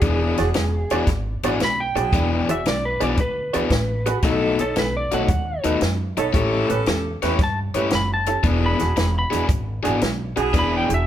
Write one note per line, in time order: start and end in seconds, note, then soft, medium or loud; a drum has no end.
0.00 0.31 E1 loud
0.00 0.38 E3 medium
0.00 0.38 B3 medium
0.00 0.37 D4 medium
0.00 0.70 D4 medium
0.00 0.70 E4 medium
0.00 1.07 G#4 loud
0.00 0.70 G#4 medium
0.00 0.37 G#4 medium
0.00 kick loud
0.00 closed hi-hat medium
0.37 0.53 E1 medium
0.37 0.47 F#4 medium
0.37 0.47 G#4 medium
0.37 0.47 D5 medium
0.37 muted overdriven electric guitar stroke medium
0.37 snare soft
0.37 closed hi-hat medium
0.54 0.85 E1 medium
0.54 muted overdriven electric guitar stroke soft
0.54 snare loud
0.54 closed hi-hat medium
0.90 1.05 E1 medium
0.90 1.08 E3 medium
0.90 1.08 B3 medium
0.90 1.08 D4 medium
0.90 1.00 F#4 medium
0.90 1.00 G#4 medium
0.90 1.08 G#4 loud
0.90 1.00 D5 medium
0.90 closed hi-hat medium
1.07 1.36 G#1 medium
1.07 muted overdriven electric guitar stroke soft
1.07 kick loud
1.07 snare soft
1.07 closed hi-hat medium
1.43 1.57 G#1 medium
1.43 1.60 E3 medium
1.43 1.60 B3 medium
1.43 1.61 D4 loud
1.43 1.53 F#4 medium
1.43 1.61 G#4 loud
1.43 1.52 G#4 medium
1.43 1.53 D5 medium
1.43 closed hi-hat medium
1.60 1.90 B1 medium
1.60 muted overdriven electric guitar stroke soft
1.60 snare loud
1.60 closed hi-hat medium
1.65 1.80 B5 medium
1.80 2.47 G5 medium
1.95 2.10 B1 medium
1.95 2.55 D4 medium
1.95 2.56 E4 medium
1.95 2.04 F#4 medium
1.95 2.04 G#4 medium
1.95 2.56 G#4 medium
1.95 2.04 D5 medium
1.95 muted overdriven electric guitar stroke medium
1.95 closed hi-hat medium
2.13 2.42 E1 medium
2.13 2.49 E3 medium
2.13 2.49 B3 medium
2.13 2.48 D4 loud
2.13 2.48 G#4 medium
2.13 kick loud
2.13 closed hi-hat medium
2.49 2.63 E1 medium
2.49 2.57 F#4 medium
2.49 2.57 G#4 medium
2.49 2.58 D5 medium
2.49 2.67 E5 medium
2.49 muted overdriven electric guitar stroke soft
2.49 closed hi-hat medium
2.65 2.95 B1 medium
2.65 2.84 D5 medium
2.65 muted overdriven electric guitar stroke soft
2.65 snare loud
2.65 closed hi-hat medium
2.85 3.01 B4 medium
3.00 3.16 B1 medium
3.00 3.18 E3 medium
3.00 3.17 B3 medium
3.00 3.18 D4 loud
3.00 3.09 F#4 medium
3.00 3.09 G#4 medium
3.00 3.18 G#4 loud
3.00 3.10 D5 medium
3.00 3.19 D5 medium
3.00 closed hi-hat medium
3.17 3.47 D2 medium
3.17 4.22 B4 medium
3.17 muted overdriven electric guitar stroke soft
3.17 kick loud
3.17 closed hi-hat medium
3.53 3.69 D2 medium
3.53 3.70 E3 medium
3.53 3.71 B3 medium
3.53 3.71 D4 medium
3.53 3.62 F#4 medium
3.53 3.62 G#4 medium
3.53 3.71 G#4 loud
3.53 3.62 D5 medium
3.53 closed hi-hat medium
3.70 4.13 A1 medium
3.70 muted overdriven electric guitar stroke soft
3.70 kick medium
3.70 snare loud
3.70 closed hi-hat medium
4.06 4.15 F#4 medium
4.06 4.15 G#4 medium
4.06 4.15 B4 loud
4.06 muted overdriven electric guitar stroke soft
4.06 closed hi-hat medium
4.22 4.52 B1 loud
4.22 4.59 B2 medium
4.22 4.60 A3 medium
4.22 4.90 B3 medium
4.22 4.91 D#4 medium
4.22 4.59 D#4 medium
4.22 4.59 F#4 medium
4.22 4.91 A4 loud
4.22 kick loud
4.22 snare soft
4.22 closed hi-hat medium
4.59 4.73 B1 medium
4.59 4.68 D#4 medium
4.59 4.68 A4 medium
4.59 4.77 A4 loud
4.59 4.68 C#5 medium
4.59 muted overdriven electric guitar stroke soft
4.59 closed hi-hat medium
4.76 5.06 B1 medium
4.76 4.95 B4 medium
4.76 muted overdriven electric guitar stroke soft
4.76 snare loud
4.76 closed hi-hat medium
4.97 5.12 D5 medium
5.11 5.26 B1 medium
5.11 5.27 B2 medium
5.11 5.28 A3 loud
5.11 5.28 D#4 medium
5.11 5.21 D#4 medium
5.11 5.28 F#4 medium
5.11 5.21 A4 medium
5.11 5.21 C#5 medium
5.11 5.64 F#5 medium
5.11 closed hi-hat medium
5.28 5.58 D#2 medium
5.28 muted overdriven electric guitar stroke soft
5.28 kick loud
5.28 closed hi-hat medium
5.64 5.78 D#2 medium
5.64 5.80 B2 medium
5.64 5.81 A3 medium
5.64 5.81 D#4 medium
5.64 5.73 D#4 medium
5.64 5.81 F#4 medium
5.64 5.73 A4 medium
5.64 5.73 B4 medium
5.64 closed hi-hat medium
5.81 6.11 F#2 medium
5.81 muted overdriven electric guitar stroke soft
5.81 snare loud
5.81 closed hi-hat medium
6.17 6.31 B1 medium
6.17 6.34 B3 medium
6.17 6.34 D#4 medium
6.17 6.26 D#4 medium
6.17 6.33 A4 loud
6.17 6.26 A4 medium
6.17 6.26 C#5 loud
6.17 muted overdriven electric guitar stroke medium
6.17 closed hi-hat medium
6.33 6.63 A1 medium
6.33 6.69 A3 medium
6.33 7.26 C#4 medium
6.33 6.69 E4 medium
6.33 6.69 G4 medium
6.33 7.26 G4 medium
6.33 7.26 A4 loud
6.33 6.68 C#5 medium
6.33 kick loud
6.33 closed hi-hat medium
6.70 6.84 A1 medium
6.70 6.79 C#4 medium
6.70 6.79 G4 medium
6.70 6.79 B4 medium
6.70 muted overdriven electric guitar stroke soft
6.70 closed hi-hat medium
6.86 7.16 E2 medium
6.86 muted overdriven electric guitar stroke soft
6.86 snare loud
6.86 closed hi-hat medium
7.22 7.36 E2 medium
7.22 7.39 A3 medium
7.22 7.31 C#4 medium
7.22 7.40 E4 medium
7.22 7.40 G4 loud
7.22 7.31 G4 medium
7.22 7.31 B4 loud
7.22 7.39 C#5 medium
7.22 snare soft
7.22 closed hi-hat medium
7.39 7.68 G2 medium
7.39 muted overdriven electric guitar stroke soft
7.39 kick loud
7.39 snare soft
7.39 closed hi-hat medium
7.44 7.59 A5 medium
7.74 7.89 G2 medium
7.74 7.91 A3 medium
7.74 7.84 C#4 medium
7.74 7.91 E4 medium
7.74 7.91 G4 medium
7.74 7.84 G4 medium
7.74 7.84 B4 medium
7.74 7.92 C#5 medium
7.74 closed hi-hat medium
7.90 8.35 F#1 medium
7.90 muted overdriven electric guitar stroke soft
7.90 snare loud
7.90 closed hi-hat medium
7.95 8.11 B5 medium
8.14 8.46 A5 medium
8.26 8.36 C#4 medium
8.26 8.36 G4 medium
8.26 8.36 A4 medium
8.26 muted overdriven electric guitar stroke medium
8.26 closed hi-hat medium
8.43 8.73 E1 loud
8.43 8.80 E3 medium
8.43 8.79 B3 medium
8.43 9.11 D4 medium
8.43 8.79 D4 medium
8.43 9.11 E4 medium
8.43 9.11 G#4 medium
8.43 8.78 G#4 medium
8.43 kick loud
8.43 closed hi-hat medium
8.66 9.15 B5 medium
8.79 8.94 E1 medium
8.79 8.88 D4 medium
8.79 8.89 F#4 medium
8.79 8.89 G#4 medium
8.79 muted overdriven electric guitar stroke medium
8.79 snare soft
8.79 closed hi-hat medium
8.96 9.26 E1 medium
8.96 muted overdriven electric guitar stroke soft
8.96 snare loud
8.96 closed hi-hat medium
9.19 9.45 B5 medium
9.31 9.46 E1 medium
9.31 9.47 E3 medium
9.31 9.48 B3 medium
9.31 9.47 D4 medium
9.31 9.41 D4 medium
9.31 9.41 F#4 medium
9.31 9.48 G#4 loud
9.31 9.41 G#4 medium
9.31 closed hi-hat medium
9.48 9.78 G#1 medium
9.48 muted overdriven electric guitar stroke soft
9.48 kick loud
9.48 closed hi-hat medium
9.83 9.99 G#1 medium
9.83 10.01 E3 medium
9.83 10.01 B3 medium
9.83 10.01 D4 medium
9.83 9.93 D4 medium
9.83 9.93 F#4 medium
9.83 10.01 G#4 medium
9.83 9.93 G#4 loud
9.83 closed hi-hat medium
10.01 10.31 B1 medium
10.01 muted overdriven electric guitar stroke soft
10.01 snare loud
10.01 closed hi-hat medium
10.36 10.51 B1 medium
10.36 10.46 D4 medium
10.36 10.97 D4 medium
10.36 10.97 E4 medium
10.36 10.46 F#4 medium
10.36 10.46 G#4 loud
10.36 10.97 G#4 loud
10.36 muted overdriven electric guitar stroke soft
10.36 closed hi-hat medium
10.53 10.83 E1 medium
10.53 10.90 E3 medium
10.53 10.89 B3 medium
10.53 10.89 D4 medium
10.53 10.88 G#4 medium
10.53 kick loud
10.53 snare soft
10.53 closed hi-hat medium
10.59 10.74 B5 loud
10.77 10.92 G5 medium
10.89 11.04 E1 medium
10.89 10.99 D4 medium
10.89 10.98 F#4 medium
10.89 10.99 G#4 medium
10.89 muted overdriven electric guitar stroke soft
10.89 closed hi-hat medium
10.94 11.07 E5 medium